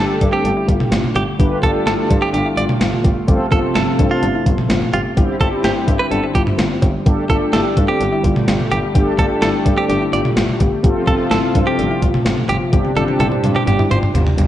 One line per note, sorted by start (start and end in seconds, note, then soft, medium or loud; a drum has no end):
0.00 3.24 D3 medium
0.00 3.24 G3 medium
0.00 5.13 A3 medium
0.00 0.47 D4 medium
0.00 0.17 E4 medium
0.00 0.47 G4 medium
0.00 1.37 G4 medium
0.00 0.47 A4 loud
0.21 0.29 G2 loud
0.21 0.31 D4 medium
0.21 kick loud
0.21 closed hi-hat medium
0.33 0.43 C4 medium
0.33 0.66 G4 medium
0.45 0.53 G1 loud
0.45 0.54 D4 medium
0.45 closed hi-hat medium
0.57 0.66 E4 medium
0.68 0.76 G1 loud
0.68 0.88 F4 medium
0.68 kick medium
0.68 closed hi-hat medium
0.80 mid tom medium
0.92 1.00 G1 loud
0.92 1.11 F4 medium
0.92 snare loud
0.92 closed hi-hat medium
1.04 mid tom medium
1.15 1.24 G1 loud
1.15 1.35 G4 medium
1.15 1.22 G4 medium
1.15 closed hi-hat medium
1.39 1.47 G1 loud
1.39 1.58 D4 medium
1.39 5.13 F4 medium
1.39 1.59 G4 medium
1.39 1.58 G4 medium
1.39 1.58 B4 loud
1.39 kick loud
1.39 closed hi-hat medium
1.63 1.71 G1 loud
1.63 2.36 D4 medium
1.63 1.82 F4 medium
1.63 2.36 G4 medium
1.63 1.70 A4 medium
1.63 2.36 A4 loud
1.63 kick medium
1.63 closed hi-hat medium
1.86 1.94 G1 loud
1.86 2.06 E4 medium
1.86 1.93 A4 medium
1.86 snare loud
1.86 closed hi-hat medium
2.10 2.18 G2 loud
2.10 2.20 D4 medium
2.10 kick loud
2.10 closed hi-hat medium
2.22 2.32 C4 medium
2.22 2.29 G4 medium
2.34 2.42 G1 loud
2.34 2.43 D4 medium
2.34 2.47 G4 medium
2.34 closed hi-hat medium
2.46 2.55 E4 medium
2.57 2.65 G1 medium
2.57 2.77 F4 medium
2.57 2.64 D5 medium
2.57 closed hi-hat medium
2.69 mid tom medium
2.81 2.89 G1 loud
2.81 3.00 F4 medium
2.81 snare loud
2.81 closed hi-hat medium
2.93 mid tom medium
3.05 3.13 G1 loud
3.05 3.24 G4 medium
3.05 kick loud
3.05 closed hi-hat medium
3.28 3.36 G1 loud
3.28 5.15 C3 medium
3.28 5.15 F3 medium
3.28 3.47 C4 medium
3.28 3.47 F4 medium
3.28 3.48 G4 medium
3.28 3.47 A4 loud
3.28 kick loud
3.28 closed hi-hat medium
3.52 3.60 G1 loud
3.52 4.25 C4 medium
3.52 3.71 F4 medium
3.52 4.25 F4 medium
3.52 4.25 A4 medium
3.52 3.59 A4 medium
3.52 kick medium
3.52 closed hi-hat medium
3.75 3.83 G1 loud
3.75 3.95 E4 medium
3.75 3.82 A4 medium
3.75 snare loud
3.75 closed hi-hat medium
3.99 4.07 G2 loud
3.99 4.09 D4 medium
3.99 kick loud
3.99 closed hi-hat medium
4.11 4.21 C4 medium
4.11 4.44 F4 medium
4.23 4.31 G1 loud
4.23 4.32 D4 medium
4.23 closed hi-hat medium
4.34 4.44 E4 medium
4.46 4.54 G1 loud
4.46 4.66 F4 medium
4.46 kick medium
4.46 closed hi-hat medium
4.58 mid tom medium
4.70 4.78 G1 loud
4.70 4.89 F4 medium
4.70 snare loud
4.70 closed hi-hat medium
4.82 mid tom medium
4.93 5.02 G1 loud
4.93 5.00 F4 medium
4.93 5.13 G4 medium
4.93 closed hi-hat medium
5.17 5.25 G1 loud
5.17 10.80 D3 medium
5.17 10.80 G3 medium
5.17 7.04 C4 medium
5.17 5.36 C4 medium
5.17 7.04 E4 medium
5.17 5.36 E4 medium
5.17 5.37 G4 loud
5.17 5.36 G4 loud
5.17 kick loud
5.17 closed hi-hat medium
5.41 5.49 G1 loud
5.41 6.14 C4 medium
5.41 6.14 E4 medium
5.41 5.60 F4 medium
5.41 6.14 G4 loud
5.41 5.48 A4 medium
5.41 kick medium
5.41 closed hi-hat medium
5.64 5.72 G1 loud
5.64 5.84 E4 medium
5.64 5.71 G4 medium
5.64 snare loud
5.64 closed hi-hat medium
5.88 5.96 G2 loud
5.88 5.98 D4 medium
5.88 kick loud
5.88 closed hi-hat medium
6.00 6.10 C4 medium
6.00 6.06 B4 medium
6.12 6.20 G1 loud
6.12 6.22 D4 medium
6.12 6.25 A4 medium
6.12 closed hi-hat medium
6.24 6.33 E4 medium
6.35 6.43 G1 medium
6.35 6.55 F4 medium
6.35 6.42 G4 medium
6.35 kick medium
6.35 closed hi-hat medium
6.47 mid tom medium
6.59 6.67 G1 loud
6.59 6.78 F4 medium
6.59 snare loud
6.59 closed hi-hat medium
6.82 6.91 G1 loud
6.82 7.02 G4 medium
6.82 kick loud
6.82 closed hi-hat medium
6.82 mid tom medium
6.82 cowbell medium
7.06 7.14 G1 loud
7.06 12.69 A3 medium
7.06 7.25 D4 medium
7.06 7.25 G4 medium
7.06 7.26 G4 medium
7.06 10.80 G4 medium
7.06 7.24 A4 loud
7.06 kick loud
7.06 closed hi-hat medium
7.30 7.38 G1 loud
7.30 8.03 D4 medium
7.30 7.49 F4 medium
7.30 8.03 G4 medium
7.30 7.36 A4 medium
7.30 8.03 A4 medium
7.30 kick loud
7.30 closed hi-hat medium
7.53 7.62 G1 loud
7.53 7.73 E4 medium
7.53 7.60 A4 medium
7.53 snare loud
7.53 closed hi-hat medium
7.77 7.85 G2 loud
7.77 7.87 D4 medium
7.77 kick loud
7.77 closed hi-hat medium
7.88 7.99 C4 medium
7.88 8.22 G4 medium
8.01 8.09 G1 loud
8.01 8.10 D4 medium
8.01 closed hi-hat medium
8.12 8.22 E4 medium
8.24 8.32 G1 loud
8.24 8.44 F4 medium
8.24 kick medium
8.24 closed hi-hat medium
8.36 mid tom medium
8.48 8.56 G1 loud
8.48 8.67 F4 medium
8.48 snare loud
8.48 closed hi-hat medium
8.60 mid tom medium
8.71 8.80 G1 loud
8.71 8.78 G4 medium
8.71 8.91 G4 medium
8.71 closed hi-hat medium
8.95 9.03 G1 loud
8.95 9.13 D4 medium
8.95 9.13 G4 medium
8.95 9.15 G4 loud
8.95 9.13 A4 loud
8.95 kick loud
8.95 closed hi-hat medium
9.18 9.26 G1 loud
9.18 9.92 D4 medium
9.18 9.38 F4 medium
9.18 9.92 G4 medium
9.18 9.92 A4 loud
9.18 9.26 A4 medium
9.18 kick medium
9.18 closed hi-hat medium
9.42 9.50 G1 loud
9.42 9.62 E4 medium
9.42 9.49 A4 medium
9.42 snare loud
9.42 closed hi-hat medium
9.66 9.74 G2 loud
9.66 9.76 D4 medium
9.66 kick loud
9.66 closed hi-hat medium
9.78 9.88 C4 medium
9.78 9.84 G4 medium
9.90 9.98 G1 loud
9.90 9.99 D4 medium
9.90 10.03 G4 medium
9.90 closed hi-hat medium
10.01 10.11 E4 medium
10.13 10.21 G1 loud
10.13 10.33 F4 medium
10.13 10.20 D5 medium
10.13 closed hi-hat medium
10.25 mid tom medium
10.37 10.45 G1 loud
10.37 10.56 F4 medium
10.37 snare loud
10.37 closed hi-hat medium
10.49 mid tom medium
10.60 10.69 G1 loud
10.60 10.80 G4 medium
10.60 kick loud
10.60 closed hi-hat medium
10.84 10.92 G1 loud
10.84 14.47 C3 medium
10.84 12.71 F3 medium
10.84 11.02 C4 medium
10.84 11.02 F4 medium
10.84 12.71 F4 medium
10.84 11.04 G4 loud
10.84 11.02 A4 loud
10.84 kick loud
10.84 closed hi-hat medium
11.07 11.15 G1 loud
11.07 11.81 C4 medium
11.07 11.27 F4 medium
11.07 11.81 F4 medium
11.07 11.14 A4 medium
11.07 11.81 A4 medium
11.07 kick medium
11.07 closed hi-hat medium
11.31 11.39 G1 loud
11.31 11.51 E4 medium
11.31 11.38 A4 medium
11.31 snare loud
11.31 closed hi-hat medium
11.55 11.63 G2 loud
11.55 11.65 D4 medium
11.55 kick loud
11.55 closed hi-hat medium
11.67 11.76 C4 medium
11.67 12.00 G4 medium
11.78 11.86 G1 loud
11.78 11.88 D4 medium
11.78 closed hi-hat medium
11.90 12.00 E4 medium
12.02 12.10 G1 loud
12.02 12.22 F4 medium
12.02 kick medium
12.02 closed hi-hat medium
12.14 mid tom medium
12.26 12.34 G1 loud
12.26 12.45 F4 medium
12.26 snare loud
12.26 closed hi-hat medium
12.38 mid tom medium
12.49 12.57 G1 loud
12.49 12.56 G4 medium
12.49 12.69 G4 medium
12.49 closed hi-hat medium
12.73 12.81 G1 loud
12.73 14.47 G3 medium
12.73 12.91 C4 medium
12.73 12.91 D4 medium
12.73 14.47 D4 medium
12.73 12.91 G4 loud
12.73 12.93 G4 loud
12.73 14.47 G4 medium
12.73 kick loud
12.73 closed hi-hat medium
12.73 high tom medium
12.85 high tom medium
12.97 13.05 G1 medium
12.97 13.70 C4 medium
12.97 13.70 D4 medium
12.97 13.16 F4 medium
12.97 13.70 G4 loud
12.97 13.04 A4 medium
12.97 closed hi-hat medium
12.97 high tom medium
13.09 high tom medium
13.20 13.28 G1 loud
13.20 13.40 E4 medium
13.20 13.27 A4 medium
13.20 closed hi-hat medium
13.20 mid tom medium
13.32 mid tom medium
13.44 13.52 G2 loud
13.44 13.54 D4 medium
13.44 closed hi-hat medium
13.44 mid tom medium
13.56 13.65 C4 medium
13.56 13.63 G4 medium
13.56 mid tom medium
13.67 13.75 G1 loud
13.67 13.77 D4 medium
13.67 13.81 G4 medium
13.67 closed hi-hat medium
13.67 mid tom medium
13.79 13.89 E4 medium
13.79 mid tom medium
13.91 13.99 G1 loud
13.91 14.11 F4 medium
13.91 13.98 C5 medium
13.91 closed hi-hat medium
13.91 mid tom medium
14.03 mid tom medium
14.15 14.23 G1 loud
14.15 14.34 F4 medium
14.15 closed hi-hat medium
14.15 floor tom loud
14.27 floor tom loud
14.38 14.46 G1 loud
14.38 14.47 G4 medium
14.38 closed hi-hat medium
14.38 floor tom loud